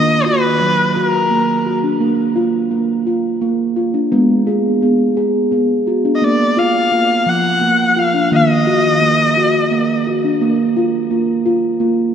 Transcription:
Already playing: steel tongue drum D#3 A#3, erhu D#5
0.25 steel tongue drum F#4, erhu B4
0.61 steel tongue drum F#3
0.95 steel tongue drum F#4, erhu B4
1.06 erhu A#4
1.31 steel tongue drum A#3
1.66 steel tongue drum F#4
1.83 steel tongue drum D4
2.00 steel tongue drum A#3
2.36 steel tongue drum F4
2.71 steel tongue drum A#3
3.07 steel tongue drum F4
3.41 steel tongue drum A#3
3.76 steel tongue drum F4
3.94 steel tongue drum D4
4.12 steel tongue drum G#3 B3
4.47 steel tongue drum G#4
4.82 steel tongue drum B3
5.17 steel tongue drum G#4
5.52 steel tongue drum B3
5.87 steel tongue drum F#4
6.05 steel tongue drum D4
6.15 erhu D#5
6.22 steel tongue drum A#3, erhu D5
6.57 steel tongue drum F4, erhu F5
6.92 steel tongue drum A#3
7.26 steel tongue drum F3, erhu F#5
7.61 steel tongue drum A#3
7.96 steel tongue drum F4, erhu F5
8.14 steel tongue drum D4
8.31 steel tongue drum D#3 A#3
8.35 erhu D#5
8.67 steel tongue drum F#4
9.01 steel tongue drum A#3
9.37 steel tongue drum F#4
9.71 steel tongue drum A#3
10.07 steel tongue drum F#4
10.24 steel tongue drum D4
10.41 steel tongue drum A#3
10.77 steel tongue drum F4
11.11 steel tongue drum A#3
11.46 steel tongue drum F4
11.80 steel tongue drum A#3

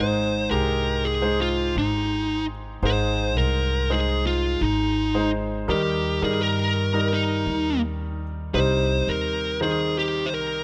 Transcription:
Already playing: upright bass G#1, grand piano G#2 G#3 D#4 C5, lead electric guitar C5
0.50 upright bass C2, grand piano G#3 D#4 G4, lead electric guitar A#4
1.05 lead electric guitar G#4
1.22 grand piano G#3 D#4 C5
1.41 lead electric guitar F4
1.75 upright bass G#1, lead electric guitar D#4
2.83 upright bass G#1, grand piano G#2 G#3 D#4 C5, lead electric guitar C5
3.36 upright bass C2, lead electric guitar A#4
3.90 grand piano G#3 D#4 C5, lead electric guitar G#4
4.27 lead electric guitar F4
4.61 upright bass G#1, lead electric guitar D#4
5.14 grand piano G#3 D#4 C5
5.68 upright bass D#2, grand piano D#3 G3 D#4 A#4, lead electric guitar G4
6.22 upright bass G2, grand piano G3 D#4 A#4, lead electric guitar G#4
6.41 lead electric guitar A#4
6.93 grand piano G3 D#4 A#4
7.13 lead electric guitar D#4
7.46 upright bass D#2
8.54 upright bass C2, grand piano C3 G3 D#4 C5, lead electric guitar C5
9.07 upright bass D#2, lead electric guitar A#4
9.61 grand piano D#3 D#4 C5, lead electric guitar G#4
9.99 lead electric guitar G4
10.26 lead electric guitar C5
10.32 upright bass C2, lead electric guitar A#4

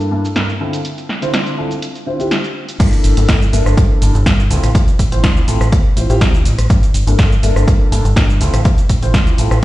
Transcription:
0.01 shaker
0.11 grand piano G2 A#3 D4 E4 A4
0.25 shaker
0.36 grand piano G2 A#3 D4 E4 A#4, snare, closed hi-hat, shaker
0.49 shaker
0.60 grand piano D3 C4 E4 F4 A4
0.73 closed hi-hat, shaker
0.85 closed hi-hat, shaker
0.98 closed hi-hat, shaker
1.09 snare
1.22 grand piano D3 C4 E4 F4 C5, closed hi-hat, shaker
1.33 grand piano D3 C4 E4 F4 D5, snare, closed hi-hat, shaker
1.47 closed hi-hat, shaker
1.58 grand piano D3 C4 E4 F4 A4
1.71 closed hi-hat, shaker
1.82 closed hi-hat, shaker
1.96 closed hi-hat, shaker
2.06 grand piano D3 C4 E4 F4 C5
2.19 grand piano D3 C4 E4 F4 G4, closed hi-hat, shaker
2.31 snare, closed hi-hat, shaker
2.44 closed hi-hat, shaker
2.69 closed hi-hat, shaker
2.79 fingered electric bass G2, grand piano A#3 D4 E4 A4, kick, closed hi-hat, crash, shaker
2.93 closed hi-hat, shaker
3.04 fingered electric bass G1, open hi-hat, shaker
3.17 fingered electric bass G1, grand piano A#3 D4 E4 A4, closed hi-hat, shaker
3.28 fingered electric bass G2, grand piano A#3 E4, kick, snare, closed hi-hat, shaker
3.42 shaker
3.53 fingered electric bass G1, grand piano A#3 D4 E4 A4, open hi-hat, shaker
3.66 fingered electric bass G1, cross-stick, shaker
3.77 fingered electric bass G2, kick, closed hi-hat, shaker
4.01 fingered electric bass G1, grand piano A#3 D4 E4 A4, open hi-hat, shaker
4.15 fingered electric bass G1, closed hi-hat, shaker
4.26 fingered electric bass G2, grand piano A#3 D4 E4 A#4, kick, snare, closed hi-hat, shaker
4.40 shaker
4.50 fingered electric bass D2, grand piano C4 E4 F4 A4, open hi-hat, shaker
4.63 fingered electric bass A1, cross-stick, closed hi-hat, shaker
4.75 fingered electric bass D2, kick, closed hi-hat, shaker
4.88 closed hi-hat, shaker
4.99 fingered electric bass A1, kick, open hi-hat, shaker
5.12 fingered electric bass A1, grand piano C4 E4 F4 C5, closed hi-hat, shaker
5.24 fingered electric bass D2, kick, snare, closed hi-hat, shaker
5.37 shaker
5.47 fingered electric bass A1, grand piano C4 E4 F4 A4, open hi-hat, shaker
5.61 fingered electric bass A1, cross-stick, shaker
5.72 fingered electric bass D2, kick, closed hi-hat, shaker
5.96 fingered electric bass A1, grand piano C4 E4 F4 C5, open hi-hat, shaker
6.09 fingered electric bass A1, grand piano C4 E4 F4 G4, closed hi-hat, shaker
6.21 fingered electric bass D2, kick, snare, closed hi-hat, shaker
6.34 shaker
6.45 fingered electric bass A1, open hi-hat, shaker
6.59 fingered electric bass A1, cross-stick, closed hi-hat, shaker
6.70 fingered electric bass G2, kick, closed hi-hat, shaker
6.83 closed hi-hat, shaker
6.94 fingered electric bass G1, open hi-hat, shaker
7.07 fingered electric bass G1, grand piano A#3 D4 E4 A4, closed hi-hat, shaker
7.19 fingered electric bass G2, grand piano A#3 D4 E4, kick, snare, closed hi-hat, shaker
7.32 shaker
7.43 fingered electric bass G1, grand piano A#3 D4 E4 A4, open hi-hat, shaker
7.56 fingered electric bass G1, cross-stick, shaker
7.67 fingered electric bass G2, kick, closed hi-hat, shaker
7.91 fingered electric bass G1, grand piano A#3 D4 E4 A4, open hi-hat, shaker
8.05 fingered electric bass G1, closed hi-hat, shaker
8.16 fingered electric bass G2, grand piano A#3 D4 E4 A#4, kick, snare, closed hi-hat, shaker
8.30 shaker
8.40 fingered electric bass D2, grand piano C4 E4 F4 A4, open hi-hat, shaker
8.53 fingered electric bass A1, cross-stick, closed hi-hat, shaker
8.65 fingered electric bass D2, kick, closed hi-hat, shaker
8.78 closed hi-hat, shaker
8.89 fingered electric bass A1, kick, open hi-hat, shaker
9.02 fingered electric bass A1, grand piano C4 E4 F4 C5, closed hi-hat, shaker
9.14 fingered electric bass D2, grand piano E4 F4, kick, snare, closed hi-hat, shaker
9.27 closed hi-hat, shaker
9.38 fingered electric bass A1, grand piano C4 E4 F4 A4, open hi-hat, shaker
9.51 fingered electric bass A1, cross-stick, shaker

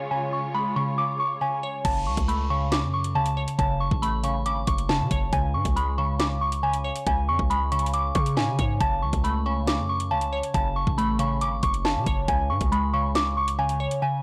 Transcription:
Already playing: string section C#3 G#3 F4 C#5, synth pluck C#5
0.11 synth pluck C#3, synth bell G#5
0.33 synth bell C#6
0.54 synth pluck G#3, synth bell B5
0.76 synth pluck C#3, synth bell C#6
0.98 synth pluck C#3, synth bell D6
1.20 synth bell C#6
1.41 synth pluck C#3, synth bell G#5
1.63 synth pluck C#5
1.85 808-style bass F#1, synth pluck C#3, synth bell A5, kick, closed hi-hat, crash
2.07 808-style bass C#2, synth bell C#6
2.17 808-style bass C#2, kick, closed hi-hat
2.28 synth pluck A3, synth bell B5, closed hi-hat
2.50 synth pluck C#3, synth bell C#6
2.72 synth pluck C#3, synth bell D6, snare, closed hi-hat
2.83 808-style bass F#2
2.94 synth bell C#6
3.04 closed hi-hat
3.15 808-style bass C#2, synth pluck C#3, synth bell A5
3.26 closed hi-hat
3.37 synth pluck C#5
3.48 closed hi-hat
3.59 808-style bass F#1, synth pluck C#3, synth bell A5, kick, closed hi-hat
3.80 synth bell C#6
3.91 808-style bass A1, kick
4.02 synth pluck A3, synth bell B5, closed hi-hat
4.24 synth pluck C#3, synth bell C#6, closed hi-hat
4.46 808-style bass G#1, synth pluck C#3, synth bell D6, closed hi-hat
4.67 808-style bass F#1, synth bell C#6, kick, closed hi-hat
4.78 closed hi-hat
4.89 synth pluck C#3, synth bell A5, snare
5.00 808-style bass C#3
5.11 808-style bass F#1, synth pluck C#5, kick, closed hi-hat
5.33 808-style bass C#2, synth pluck C#3, synth bell G#5, kick, closed hi-hat
5.54 808-style bass G#2, synth bell C#6
5.65 808-style bass C#2, kick, closed hi-hat
5.76 synth pluck G#3, synth bell B5, closed hi-hat
5.98 synth pluck C#3, synth bell C#6
6.19 synth pluck C#3, synth bell D6, snare, closed hi-hat
6.41 synth bell C#6
6.52 closed hi-hat
6.63 synth pluck C#3, synth bell G#5
6.73 closed hi-hat
6.84 synth pluck C#5
6.96 closed hi-hat
7.07 808-style bass C#2, synth pluck C#3, synth bell G#5, kick, closed hi-hat
7.28 808-style bass F2, synth bell C#6
7.39 808-style bass C#2, kick
7.50 synth pluck G#3, synth bell B5, closed hi-hat
7.72 synth pluck C#3, synth bell C#6, closed hi-hat
7.79 closed hi-hat
7.86 closed hi-hat
7.94 synth pluck C#3, synth bell D6, closed hi-hat
8.15 808-style bass C#3, synth bell C#6, kick, closed hi-hat
8.26 closed hi-hat
8.37 808-style bass G#2, synth pluck C#3, synth bell G#5, snare
8.48 808-style bass C#3
8.59 808-style bass G#2, synth pluck C#5, kick, closed hi-hat
8.81 808-style bass F#1, synth pluck C#3, synth bell A5, kick, closed hi-hat
9.02 808-style bass C#2, synth bell C#6
9.13 808-style bass C#2, kick, closed hi-hat
9.24 synth pluck A3, synth bell B5, closed hi-hat
9.46 synth pluck C#3, synth bell C#6
9.67 synth pluck C#3, synth bell D6, snare, closed hi-hat
9.78 808-style bass F#2
9.89 synth bell C#6
10.00 closed hi-hat
10.11 808-style bass C#2, synth pluck C#3, synth bell A5
10.21 closed hi-hat
10.33 synth pluck C#5
10.43 closed hi-hat
10.54 808-style bass F#1, synth pluck C#3, synth bell A5, kick, closed hi-hat
10.76 synth bell C#6
10.87 808-style bass A1, kick
10.98 synth pluck A3, synth bell B5, closed hi-hat
11.19 synth pluck C#3, synth bell C#6, closed hi-hat
11.41 808-style bass G#1, synth pluck C#3, synth bell D6, closed hi-hat
11.63 808-style bass F#1, synth bell C#6, kick, closed hi-hat
11.74 closed hi-hat
11.85 synth pluck C#3, synth bell A5, snare
11.96 808-style bass C#3
12.06 808-style bass F#1, synth pluck C#5, kick, closed hi-hat
12.28 808-style bass C#2, synth pluck C#3, synth bell G#5, kick, closed hi-hat
12.50 808-style bass G#2, synth bell C#6
12.61 808-style bass C#2, kick, closed hi-hat
12.72 synth pluck G#3, synth bell B5, closed hi-hat
12.93 synth pluck C#3, synth bell C#6
13.15 synth pluck C#3, synth bell D6, snare, closed hi-hat
13.37 synth bell C#6
13.48 closed hi-hat
13.59 synth pluck C#3, synth bell G#5
13.69 closed hi-hat
13.80 synth pluck C#5
13.91 closed hi-hat
14.02 synth pluck C#3, synth bell G#5

